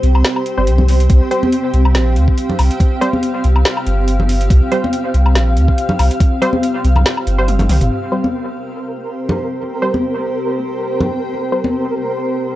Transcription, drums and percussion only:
0.03 closed hi-hat
0.15 low woodblock
0.25 snare, closed hi-hat
0.36 low woodblock
0.46 closed hi-hat
0.67 closed hi-hat
0.78 high conga, low conga
0.88 open hi-hat
1.00 closed hi-hat
1.10 kick, closed hi-hat
1.31 closed hi-hat
1.43 high conga
1.52 closed hi-hat
1.74 closed hi-hat
1.85 low woodblock
1.95 snare, closed hi-hat
2.16 closed hi-hat
2.28 kick
2.38 closed hi-hat
2.50 low conga
2.59 open hi-hat, low woodblock
2.71 closed hi-hat
2.80 kick, closed hi-hat
3.02 closed hi-hat
3.13 high conga
3.23 closed hi-hat
3.44 closed hi-hat
3.56 low woodblock
3.65 snare, closed hi-hat
3.77 low woodblock
3.87 closed hi-hat
4.08 closed hi-hat
4.20 high conga, low conga
4.29 open hi-hat
4.41 closed hi-hat
4.50 kick, closed hi-hat
4.72 closed hi-hat
4.84 high conga
4.93 closed hi-hat
5.14 closed hi-hat
5.26 low woodblock
5.35 snare, closed hi-hat
5.57 closed hi-hat
5.68 kick
5.78 closed hi-hat
5.89 low conga
5.99 open hi-hat, low woodblock
6.11 closed hi-hat
6.20 kick, closed hi-hat
6.42 closed hi-hat
6.53 high conga
6.63 closed hi-hat
6.84 closed hi-hat
6.96 low conga, low woodblock
7.06 snare, closed hi-hat
7.17 low woodblock
7.27 closed hi-hat
7.48 closed hi-hat, high tom
7.59 closed hi-hat, high tom, low conga
7.69 open hi-hat, mid tom
7.81 closed hi-hat, mid tom
7.91 crash
8.24 high conga
9.29 low conga
9.94 high conga
11.01 high conga, low conga
11.64 high conga

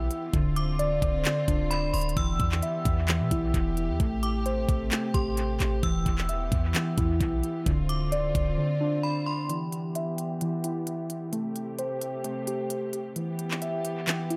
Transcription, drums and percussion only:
0.11 closed hi-hat
0.33 kick, closed hi-hat
0.56 closed hi-hat
0.79 closed hi-hat
1.02 kick, closed hi-hat
1.25 clap, closed hi-hat
1.48 kick, closed hi-hat
1.71 closed hi-hat
1.94 closed hi-hat, open hi-hat
2.01 closed hi-hat
2.09 closed hi-hat
2.17 kick, closed hi-hat
2.40 kick, closed hi-hat
2.52 clap
2.63 closed hi-hat
2.85 kick, closed hi-hat
3.08 clap, closed hi-hat
3.31 kick, closed hi-hat
3.54 kick, closed hi-hat
3.77 closed hi-hat
4.00 kick, closed hi-hat
4.23 closed hi-hat
4.46 closed hi-hat
4.69 kick, closed hi-hat
4.92 clap, closed hi-hat
5.14 kick, closed hi-hat
5.37 closed hi-hat
5.60 clap, closed hi-hat
5.83 kick, closed hi-hat
6.06 kick, closed hi-hat
6.18 clap
6.29 closed hi-hat
6.52 kick, closed hi-hat
6.75 clap, closed hi-hat
6.98 kick, closed hi-hat
7.21 kick, closed hi-hat
7.43 closed hi-hat
7.66 kick, closed hi-hat
7.89 closed hi-hat
8.12 closed hi-hat
8.35 kick, closed hi-hat
9.50 closed hi-hat
9.72 closed hi-hat
9.95 closed hi-hat
10.18 closed hi-hat
10.41 closed hi-hat
10.64 closed hi-hat
10.87 closed hi-hat
11.10 closed hi-hat
11.33 closed hi-hat
11.56 closed hi-hat
11.79 closed hi-hat
12.01 closed hi-hat
12.24 closed hi-hat
12.47 closed hi-hat
12.70 closed hi-hat
12.93 closed hi-hat
13.16 closed hi-hat
13.39 closed hi-hat
13.51 clap
13.62 closed hi-hat
13.85 closed hi-hat
14.08 clap, closed hi-hat
14.30 closed hi-hat

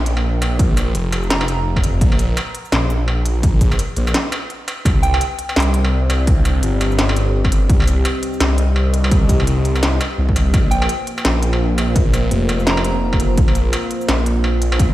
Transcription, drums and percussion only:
0.06 closed hi-hat
0.17 struck metal
0.42 closed hi-hat, struck metal
0.59 kick, closed hi-hat
0.77 closed hi-hat, struck metal, shaker
0.95 closed hi-hat
1.12 closed hi-hat, struck metal
1.23 shaker
1.30 snare, closed hi-hat
1.41 struck metal
1.48 closed hi-hat
1.76 kick, struck metal
1.84 closed hi-hat
2.01 kick, closed hi-hat
2.12 struck metal
2.19 closed hi-hat, shaker
2.37 closed hi-hat, struck metal
2.55 closed hi-hat
2.65 shaker
2.72 snare, closed hi-hat, struck metal
2.90 closed hi-hat
3.08 struck metal
3.26 closed hi-hat
3.43 kick, closed hi-hat
3.61 kick, closed hi-hat, shaker
3.72 struck metal, shaker
3.79 closed hi-hat
3.97 closed hi-hat
4.07 struck metal, shaker
4.14 snare, closed hi-hat
4.32 closed hi-hat, struck metal
4.50 closed hi-hat
4.68 closed hi-hat, struck metal
4.85 kick, closed hi-hat, struck metal
5.03 closed hi-hat, shaker
5.14 struck metal
5.21 closed hi-hat
5.39 closed hi-hat
5.49 struck metal, shaker
5.56 snare, closed hi-hat
5.60 closed hi-hat
5.62 closed hi-hat
5.74 closed hi-hat
5.85 struck metal
6.10 closed hi-hat, struck metal
6.27 kick, closed hi-hat
6.45 closed hi-hat, struck metal, shaker
6.63 closed hi-hat
6.81 closed hi-hat, struck metal
6.91 shaker
6.99 snare, closed hi-hat
7.09 struck metal
7.16 closed hi-hat
7.44 kick, struck metal
7.52 closed hi-hat
7.69 kick, closed hi-hat
7.80 struck metal
7.82 struck metal
7.84 struck metal
7.86 closed hi-hat, struck metal, shaker
8.05 closed hi-hat, struck metal
8.23 closed hi-hat
8.33 shaker
8.40 snare, closed hi-hat, struck metal
8.58 closed hi-hat
8.76 struck metal
8.94 closed hi-hat
9.04 struck metal
9.11 kick, closed hi-hat
9.29 kick, closed hi-hat, shaker
9.40 struck metal
9.47 closed hi-hat
9.65 closed hi-hat
9.76 struck metal, shaker
9.83 snare, closed hi-hat
10.01 closed hi-hat, struck metal
10.29 kick
10.36 closed hi-hat, struck metal
10.54 kick, closed hi-hat, struck metal
10.71 closed hi-hat, shaker
10.82 struck metal
10.89 closed hi-hat
11.07 closed hi-hat
11.18 struck metal, shaker
11.25 snare, closed hi-hat
11.43 closed hi-hat
11.53 struck metal
11.78 closed hi-hat, struck metal
11.96 kick, closed hi-hat
12.14 closed hi-hat, struck metal, shaker
12.31 closed hi-hat
12.49 closed hi-hat, struck metal
12.60 shaker
12.67 snare, closed hi-hat
12.77 struck metal
12.84 closed hi-hat
13.13 kick, struck metal
13.20 closed hi-hat
13.38 kick, closed hi-hat
13.48 struck metal
13.55 closed hi-hat, shaker
13.73 closed hi-hat, struck metal
13.91 closed hi-hat
14.01 shaker
14.09 snare, closed hi-hat, struck metal
14.26 closed hi-hat
14.44 struck metal
14.62 closed hi-hat
14.72 struck metal
14.79 kick, closed hi-hat

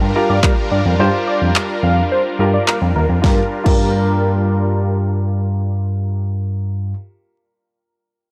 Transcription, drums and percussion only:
0.43 kick, clap
1.56 clap
2.68 clap
3.24 kick, snare
3.66 kick, crash

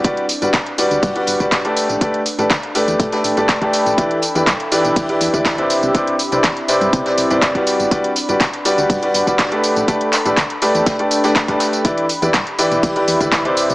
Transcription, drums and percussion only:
0.04 kick, closed hi-hat, tambourine
0.17 closed hi-hat
0.29 closed hi-hat, open hi-hat, tambourine
0.42 closed hi-hat, tambourine
0.54 kick, snare, clap, closed hi-hat, tambourine
0.66 closed hi-hat
0.78 closed hi-hat, open hi-hat, tambourine
0.91 closed hi-hat, tambourine
1.02 kick, closed hi-hat, open hi-hat, tambourine
1.16 closed hi-hat
1.27 closed hi-hat, open hi-hat, tambourine
1.40 kick, closed hi-hat, tambourine
1.51 kick, snare, clap, closed hi-hat, tambourine
1.65 closed hi-hat
1.76 closed hi-hat, open hi-hat, tambourine
1.89 closed hi-hat, tambourine
2.01 kick, closed hi-hat, tambourine
2.14 closed hi-hat
2.25 closed hi-hat, open hi-hat, tambourine
2.39 closed hi-hat, tambourine
2.50 kick, snare, clap, closed hi-hat, tambourine
2.63 closed hi-hat
2.75 closed hi-hat, open hi-hat, tambourine
2.88 closed hi-hat, tambourine
2.99 kick, closed hi-hat, tambourine
3.12 snare, closed hi-hat
3.24 closed hi-hat, open hi-hat, tambourine
3.37 closed hi-hat, tambourine
3.48 kick, snare, clap, closed hi-hat, tambourine
3.62 kick, closed hi-hat
3.73 closed hi-hat, open hi-hat, tambourine
3.86 closed hi-hat, tambourine
3.98 kick, closed hi-hat, tambourine
4.11 closed hi-hat
4.22 closed hi-hat, open hi-hat, tambourine
4.35 closed hi-hat, tambourine
4.46 kick, snare, clap, closed hi-hat, tambourine
4.60 closed hi-hat
4.71 closed hi-hat, open hi-hat, tambourine
4.85 closed hi-hat, tambourine
4.96 kick, closed hi-hat, open hi-hat, tambourine
5.09 closed hi-hat
5.21 closed hi-hat, open hi-hat, tambourine
5.34 kick, closed hi-hat, tambourine
5.45 kick, snare, clap, closed hi-hat, tambourine
5.58 closed hi-hat
5.70 closed hi-hat, open hi-hat, tambourine
5.83 closed hi-hat, tambourine
5.94 kick, closed hi-hat, tambourine
6.07 closed hi-hat
6.19 closed hi-hat, open hi-hat, tambourine
6.32 closed hi-hat, tambourine
6.43 kick, snare, clap, closed hi-hat, tambourine
6.57 closed hi-hat
6.68 closed hi-hat, open hi-hat, tambourine
6.81 closed hi-hat, tambourine
6.93 kick, closed hi-hat, tambourine
7.06 snare, closed hi-hat
7.17 closed hi-hat, open hi-hat, tambourine
7.30 closed hi-hat, tambourine
7.42 kick, snare, clap, closed hi-hat, tambourine
7.55 kick, closed hi-hat
7.67 closed hi-hat, open hi-hat, tambourine
7.80 closed hi-hat, tambourine
7.91 kick, closed hi-hat, tambourine
8.04 closed hi-hat
8.16 closed hi-hat, open hi-hat, tambourine
8.29 closed hi-hat, tambourine
8.40 kick, snare, clap, closed hi-hat, tambourine
8.53 closed hi-hat
8.65 closed hi-hat, open hi-hat, tambourine
8.78 closed hi-hat, tambourine
8.89 kick, closed hi-hat, open hi-hat, tambourine
9.03 closed hi-hat
9.14 closed hi-hat, open hi-hat, tambourine
9.27 kick, closed hi-hat, tambourine
9.39 kick, snare, clap, closed hi-hat, tambourine
9.52 closed hi-hat
9.64 closed hi-hat, open hi-hat, tambourine
9.76 closed hi-hat, tambourine
9.88 kick, closed hi-hat, tambourine
10.01 closed hi-hat
10.12 clap, closed hi-hat, open hi-hat, tambourine
10.26 closed hi-hat, tambourine
10.37 kick, snare, clap, closed hi-hat, tambourine
10.50 closed hi-hat
10.62 closed hi-hat, open hi-hat, tambourine
10.75 closed hi-hat, tambourine
10.86 kick, snare, closed hi-hat, tambourine
10.99 closed hi-hat
11.11 closed hi-hat, open hi-hat, tambourine
11.24 snare, closed hi-hat, tambourine
11.35 kick, snare, clap, closed hi-hat, tambourine
11.48 kick, closed hi-hat
11.60 snare, closed hi-hat, open hi-hat, tambourine
11.73 closed hi-hat, tambourine
11.85 kick, closed hi-hat, tambourine
11.98 closed hi-hat
12.09 closed hi-hat, open hi-hat, tambourine
12.22 closed hi-hat, tambourine
12.34 kick, snare, clap, closed hi-hat, tambourine
12.47 closed hi-hat
12.59 closed hi-hat, open hi-hat, tambourine
12.71 closed hi-hat, tambourine
12.83 kick, closed hi-hat, open hi-hat, tambourine
12.96 closed hi-hat
13.08 closed hi-hat, open hi-hat, tambourine
13.21 kick, closed hi-hat, tambourine
13.32 kick, snare, clap, closed hi-hat, tambourine
13.45 closed hi-hat
13.57 closed hi-hat, open hi-hat, tambourine
13.70 closed hi-hat, tambourine

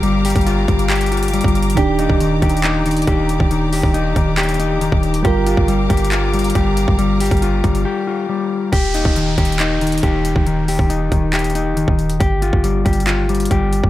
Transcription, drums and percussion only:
0.03 closed hi-hat
0.25 closed hi-hat, open hi-hat
0.30 closed hi-hat
0.36 kick, closed hi-hat
0.41 closed hi-hat
0.47 closed hi-hat
0.68 kick, closed hi-hat
0.79 closed hi-hat
0.90 clap, closed hi-hat
0.95 closed hi-hat
1.01 closed hi-hat
1.06 closed hi-hat
1.12 closed hi-hat
1.17 closed hi-hat
1.23 closed hi-hat
1.28 closed hi-hat
1.34 closed hi-hat
1.41 kick, closed hi-hat
1.48 closed hi-hat
1.55 closed hi-hat
1.63 closed hi-hat
1.70 closed hi-hat
1.77 kick, closed hi-hat
1.99 closed hi-hat
2.10 kick
2.20 closed hi-hat
2.42 kick, closed hi-hat
2.49 closed hi-hat
2.57 closed hi-hat
2.64 clap, closed hi-hat
2.86 closed hi-hat
2.91 closed hi-hat
2.97 closed hi-hat
3.02 closed hi-hat
3.07 kick, closed hi-hat
3.29 closed hi-hat
3.40 kick
3.51 closed hi-hat
3.73 open hi-hat
3.83 kick
3.94 closed hi-hat
4.16 kick, closed hi-hat
4.38 clap, closed hi-hat
4.43 closed hi-hat
4.49 closed hi-hat
4.54 closed hi-hat
4.60 closed hi-hat
4.81 closed hi-hat
4.92 kick
5.03 closed hi-hat
5.14 closed hi-hat
5.25 kick, closed hi-hat
5.47 closed hi-hat
5.57 kick
5.68 closed hi-hat
5.90 kick, closed hi-hat
5.97 closed hi-hat
6.05 closed hi-hat
6.12 clap, closed hi-hat
6.34 closed hi-hat
6.39 closed hi-hat
6.44 closed hi-hat
6.50 closed hi-hat
6.55 kick, closed hi-hat
6.77 closed hi-hat
6.88 kick
6.99 closed hi-hat
7.20 closed hi-hat, open hi-hat
7.26 closed hi-hat
7.31 kick, closed hi-hat
7.37 closed hi-hat
7.42 closed hi-hat
7.64 kick, closed hi-hat
7.75 closed hi-hat
8.73 kick, closed hi-hat
8.94 closed hi-hat
9.05 kick
9.16 closed hi-hat
9.38 kick, closed hi-hat
9.45 closed hi-hat
9.52 closed hi-hat
9.60 clap, closed hi-hat
9.81 closed hi-hat
9.87 closed hi-hat
9.92 closed hi-hat
9.98 closed hi-hat
10.03 kick, closed hi-hat
10.25 closed hi-hat
10.36 kick
10.47 closed hi-hat
10.68 open hi-hat
10.79 kick
10.90 closed hi-hat
11.12 kick, closed hi-hat
11.33 clap, closed hi-hat
11.39 closed hi-hat
11.44 closed hi-hat
11.50 closed hi-hat
11.55 closed hi-hat
11.77 closed hi-hat
11.88 kick
11.99 closed hi-hat
12.10 closed hi-hat
12.20 kick, closed hi-hat
12.42 closed hi-hat
12.53 kick
12.64 closed hi-hat
12.86 kick, closed hi-hat
12.93 closed hi-hat
13.00 closed hi-hat
13.07 clap, closed hi-hat
13.29 closed hi-hat
13.35 closed hi-hat
13.40 closed hi-hat
13.45 closed hi-hat
13.51 kick, closed hi-hat
13.73 closed hi-hat
13.84 kick

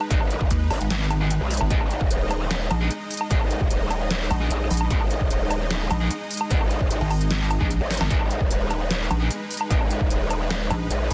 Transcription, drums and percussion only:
0.01 low woodblock
0.11 kick, closed hi-hat
0.21 low woodblock
0.31 closed hi-hat
0.41 kick
0.51 closed hi-hat
0.71 open hi-hat, low woodblock
0.81 closed hi-hat
0.91 snare, closed hi-hat
1.11 closed hi-hat, low woodblock
1.31 closed hi-hat
1.51 closed hi-hat, open hi-hat
1.57 closed hi-hat, low woodblock
1.71 kick, closed hi-hat
1.81 low woodblock
1.91 closed hi-hat
2.01 kick
2.11 closed hi-hat
2.31 closed hi-hat, low woodblock
2.51 snare, closed hi-hat
2.71 closed hi-hat, low woodblock
2.91 closed hi-hat
3.11 closed hi-hat, open hi-hat
3.17 closed hi-hat, low woodblock
3.31 kick, closed hi-hat
3.41 low woodblock
3.51 closed hi-hat
3.61 kick
3.71 closed hi-hat
3.91 closed hi-hat, low woodblock
4.11 snare, closed hi-hat
4.31 closed hi-hat, low woodblock
4.51 closed hi-hat
4.71 closed hi-hat, open hi-hat
4.77 closed hi-hat, low woodblock
4.91 kick, closed hi-hat
5.01 low woodblock
5.11 closed hi-hat
5.21 kick
5.31 closed hi-hat
5.51 closed hi-hat, low woodblock
5.71 snare, closed hi-hat
5.91 closed hi-hat, low woodblock
6.11 closed hi-hat
6.31 closed hi-hat, open hi-hat
6.37 closed hi-hat, low woodblock
6.51 kick, closed hi-hat
6.61 low woodblock
6.71 closed hi-hat
6.81 kick
6.91 closed hi-hat
7.11 open hi-hat, low woodblock
7.21 closed hi-hat
7.31 snare, closed hi-hat
7.51 closed hi-hat, low woodblock
7.61 kick
7.71 closed hi-hat
7.91 snare, closed hi-hat, open hi-hat
7.97 snare, closed hi-hat, low woodblock
8.11 kick, closed hi-hat
8.21 low woodblock
8.31 closed hi-hat
8.41 kick
8.51 closed hi-hat
8.71 closed hi-hat, low woodblock
8.91 snare, closed hi-hat
9.11 closed hi-hat, low woodblock
9.31 closed hi-hat
9.51 closed hi-hat, open hi-hat
9.57 closed hi-hat, low woodblock
9.71 kick, closed hi-hat
9.81 low woodblock
9.91 closed hi-hat
10.01 kick
10.11 closed hi-hat
10.31 closed hi-hat, low woodblock
10.51 snare, closed hi-hat
10.71 closed hi-hat, low woodblock
10.91 closed hi-hat
11.11 open hi-hat

